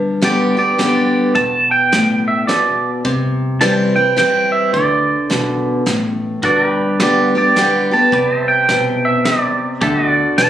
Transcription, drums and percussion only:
0.22 snare, closed hi-hat
0.79 snare, closed hi-hat
1.35 kick, closed hi-hat
1.93 snare, closed hi-hat
2.49 snare, closed hi-hat
3.05 kick, closed hi-hat
3.61 snare, closed hi-hat
4.17 snare, closed hi-hat
4.74 kick, closed hi-hat
5.31 snare, closed hi-hat
5.87 snare, closed hi-hat
6.43 kick, closed hi-hat
7.00 snare, closed hi-hat
7.56 snare, closed hi-hat
8.12 kick, closed hi-hat
8.69 snare, closed hi-hat
9.25 snare, closed hi-hat
9.81 kick, closed hi-hat
10.38 snare, closed hi-hat

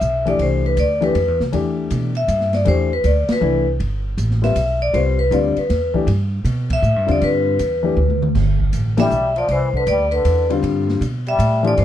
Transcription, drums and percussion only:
0.01 hi-hat pedal
0.27 ride
0.39 ride
0.77 hi-hat pedal, ride
1.02 ride
1.15 ride
1.40 snare
1.53 ride
1.90 hi-hat pedal, ride
2.15 ride
2.28 hi-hat pedal, ride
2.41 snare
2.53 snare, ride
2.65 ride
3.04 hi-hat pedal, ride
3.29 snare, ride
3.80 ride
4.18 hi-hat pedal, ride
4.31 snare
4.44 snare, ride
4.56 hi-hat pedal, ride
4.94 ride
5.32 hi-hat pedal, ride
5.57 ride
5.70 snare, ride
5.95 kick
6.08 ride
6.45 hi-hat pedal, ride
6.70 kick, ride
6.83 hi-hat pedal
7.08 ride
7.21 ride
7.59 hi-hat pedal, ride
7.97 mid tom
8.10 mid tom
8.22 mid tom
8.35 kick, snare, crash
8.60 kick
8.73 hi-hat pedal, ride
8.98 snare, ride
9.11 hi-hat pedal
9.36 ride
9.48 ride
9.74 kick
9.87 hi-hat pedal, ride
10.12 ride
10.25 hi-hat pedal, ride
10.50 ride
10.64 ride
10.89 snare
11.02 hi-hat pedal, ride
11.26 ride
11.40 hi-hat pedal, ride
11.64 ride
11.77 ride

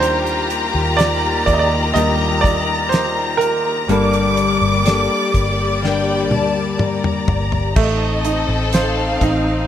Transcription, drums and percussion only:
0.02 closed hi-hat
0.26 closed hi-hat
0.50 closed hi-hat
0.99 snare, closed hi-hat
1.47 kick, closed hi-hat
1.96 closed hi-hat
2.44 kick, closed hi-hat
2.92 snare, closed hi-hat
3.41 closed hi-hat
3.89 closed hi-hat
4.13 closed hi-hat
4.37 closed hi-hat
4.85 snare, closed hi-hat
5.34 kick, closed hi-hat
5.84 snare
6.31 high tom
6.79 mid tom
7.04 mid tom
7.28 floor tom
7.52 floor tom
7.76 kick, crash
8.24 closed hi-hat
8.73 snare, closed hi-hat
9.21 kick, closed hi-hat

